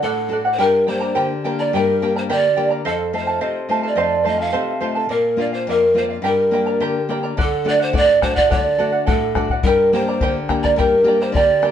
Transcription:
Already playing: D4 F#4 A4
0.02 A2 A4 D5 F#5
0.28 D4 F#4 A4 D5
0.33 F#5
0.45 D5 F#5
0.53 C5
0.58 G2 G4 A#4 D5 G5 A#5
0.87 A#3 D4 G4 A#4 C5 D5 G5 A#5
1.01 A#4 D5 A#5
1.15 D3 G4 A#4 D5 G5 A#5
1.44 A#3 D4 G4 A#4 D5 G5 A#5
1.59 A#4 D5 A#5
1.73 G2 G4 A#4 D5 G5 A#5
2.02 A#3 D4 G4 A#4 D5 G5 A#5
2.16 A#4 C5 D5 A#5
2.30 D3 G4 A#4 D5 G5 A#5
2.56 A#3 D4 G4 A#4 D5 G5 A#5
2.70 A#4 D5 A#5
2.85 F2 A4 C5 D#5 F5 A5
3.13 A3 D#4 F4 A4 C5 F5 A5
3.27 A4 F5 A5
3.41 C3 A4 C5 D#5 F5 A5
3.69 A3 D#4 F4 A4 C5 F5 A5
3.83 A4 F5 A5
3.87 D5
3.96 F2 A4 C5 D#5 F5 A5
4.24 A3 D#4 F4 A4 C5 D#5 F5 A5
4.40 A4 F5 A5
4.53 C3 A4 C5 D#5 F5 A5
4.80 A3 D#4 F4 A4 C5 F5 A5
4.95 A4 F5 A5
5.09 A#2 A#4 D5 F5
5.37 A#3 D4 F4 A#4 D5 F5
5.53 C5 D5 F5
5.67 F2 A#4 D5 F5
5.94 A#3 D4 F4 A#4 C5 D5 F5
6.10 D5 F5
6.22 G2 G4 A#4 D5 G5 A#5
6.51 A#3 D4 G4 A#4 D5 G5 A#5
6.67 A#4 D5 A#5
6.80 D3 G4 A#4 D5 G5 A#5
7.09 A#3 D4 G4 A#4 D5 G5 A#5
7.23 A#4 D5 A#5
7.37 D3 A4 D5 F#5, bombo low
7.65 A3 D4 F#4 A4 D5 F#5
7.79 C5 D5 F#5
7.93 A2 A4 D5 F#5, bombo low
8.21 A3 D4 F#4 A4 C5 D5 F#5, bombo rim, bombo low
8.35 D5 F#5, bombo low
8.49 D3 A4 D5 F#5, bombo low
8.78 A3 D4 F#4 A4 D5 F#5
8.92 D5 F#5
9.06 A2 A4 D5 F#5, bombo low
9.35 A3 D4 F#4 A4 D5 F#5, bombo rim, bombo low
9.49 D5 F#5, bombo low
9.63 G2 G4 A#4 D5 G5 A#5, bombo low
9.93 A#3 D4 G4 A#4 C5 D5 G5 A#5
10.08 A#4 D5 A#5
10.21 D3 G4 A#4 D5 G5 A#5, bombo low
10.49 A#3 D4 G4 A#4 D5 G5 A#5, bombo rim, bombo low
10.63 A#4 D5 A#5, bombo low
10.76 G2 G4 A#4 D5 G5 A#5, bombo low
11.04 A#3 D4 G4 A#4 D5 G5
11.08 A#5
11.21 A#4 C5 D5 A#5
11.32 D3 D5, bombo low
11.36 G4 A#4 D5 G5 A#5
11.62 A#3 D4 G4 A#4 D5 G5 A#5, bombo rim

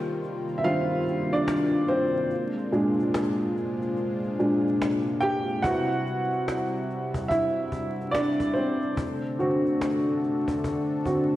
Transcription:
Already playing: C3 D#3 G3 A#3 C4 F4 G4 G5
0.07 cajon slap
0.23 cajon slap
0.48 cajon slap
0.58 E5
0.63 D#3 G3 C4 F4 F5, cajon slap
1.08 cajon slap
1.33 D4 D5, cajon slap
1.48 cajon slap
1.88 C4 C5, cajon slap
2.14 cajon slap
2.30 G#3 D4 F4, cajon slap
2.58 cajon slap
2.72 A#2 G#3 D4, cajon slap
2.99 cajon slap
3.14 cajon slap
3.41 cajon slap
3.57 cajon slap
3.82 cajon slap
3.96 cajon slap
4.23 cajon slap
4.39 A#2 G#3 D4, cajon slap
4.67 cajon slap
4.82 cajon slap
5.06 cajon slap
5.21 G4 G5, cajon slap
5.48 cajon slap
5.63 C3 G3 C4 E4 F#4 B4 F#5, cajon bass
5.92 cajon slap
6.06 cajon slap
6.33 cajon slap
6.48 cajon slap
6.74 cajon slap
6.90 cajon slap
7.14 cajon bass
7.29 E4 E5, cajon bass
7.72 cajon bass
8.01 cajon slap
8.11 D4 D5, cajon slap
8.40 cajon bass
8.53 C4 C5, cajon slap
8.82 cajon slap
8.97 D3 A3 D4 A4, cajon bass
9.25 cajon slap
9.39 D3 C4 F#4, cajon slap
9.66 cajon slap
9.81 cajon slap
10.08 cajon slap
10.23 cajon slap
10.48 cajon bass
10.64 cajon bass
11.06 D3 C4 F#4, cajon bass

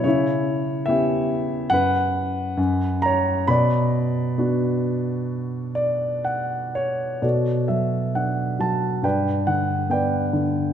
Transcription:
0.04 C#3 E4 C#5
0.86 B3 C#4 E4 G4 E5
1.70 F#2 B4 F#5
2.57 F#2
3.02 C#5 A#5
3.47 B2 D5 B5
4.38 B3 D4 F#4
5.75 D5
6.25 F#5
6.75 C#5
7.22 B2 F#4 A4 D5
7.68 F#3 E5
8.15 D4 F#5
8.60 F#3 A5
9.02 G2 B4 D5 G5
9.47 D3 F#5
9.90 B3 B4 D5 G5
10.33 D3

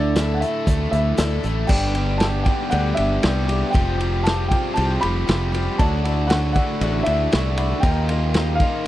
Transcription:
Already playing: D2 D3 A3 D4 E4 A4 D5
0.15 D3 A3 E4 A4, snare, closed hi-hat
0.34 F#5
0.40 A3 E4 A4 E5, closed hi-hat
0.67 D2 D3 A3 E4 A4, kick, closed hi-hat
0.91 D2 D3 E4 A4 E5, closed hi-hat
0.95 A3
1.17 D2 D3 A3 E4 A4, snare, closed hi-hat
1.43 A1 A3 E4 A4, closed hi-hat
1.67 G1 G2 D3 G3 B3 D4 G4 G5, kick, crash
1.94 G3 B3 D4 G4, ride
2.18 G3 A5, snare, ride
2.22 B3 D4 G4
2.43 B3 D4 G4 G5, kick, ride
2.48 G2 D3 G3
2.70 D2 G2 D3 G3 B3 D4 G4 F#5, ride
2.94 B3 D4 G4 E5, ride
2.98 G1 G3
3.23 C2 G2 D3 G3 B3 D4 G4, snare, ride
3.48 G3 B3 D4 G4, ride
3.71 F3 G3 C4 F4 G5, kick
3.75 F1 G4, ride
4.00 G3 C4 F4 G4, ride
4.23 F3 G3 C4 F4 A5, snare, ride
4.28 G4
4.48 G3 G4 G5, kick, ride
4.52 F3 C4 F4
4.74 C2 F3 G3 C4 F4 A5, ride
4.78 G4
5.01 F1 G3 F4 G4 B5, ride
5.05 C4
5.27 F1 F3 G3 C4 F4 G4, snare, ride
5.52 G3 C4 F4 G4, ride
5.78 D2 D3 F#3 A3 D4 E4 F#4 A5, kick, ride
6.04 D4 E4 F#4, ride
6.09 A3
6.27 D3 F#3 A3 D4 F#4 F#5, snare, ride
6.32 E4
6.53 D4 E4 F#4 F#5, kick, ride
6.57 D3 A3
6.81 A1 D3 F#3 A3 D4 E4 F#4, ride
7.03 D2 E4 F#4 E5, ride
7.07 A3 D4
7.32 C2 D3 F#3 A3 D4 E4 F#4, snare, ride
7.57 A3 D4 E4 F#4, ride
7.80 D#2 D#3 F3 A#3 G5, kick, ride
7.85 D#4 F4 A#4
8.09 A#3 D#4 F4 A#4, ride
8.34 D#3 F3 A#3 D#4 F4 A#4, snare, ride
8.55 F5
8.60 A#3 D#4 F4 A#4, kick, ride
8.64 D#3

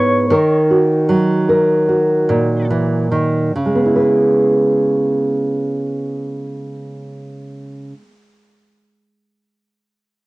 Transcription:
Already playing: G#2 G#3 B3 E4 B4 C#5
0.30 D#3 A#4
0.70 F#4
1.09 F#3
1.49 A#4
1.89 F#4
2.29 A#2
2.71 E3
3.12 D#3
3.56 C#3
3.66 G#3
3.75 B3
3.86 E4
3.96 B4

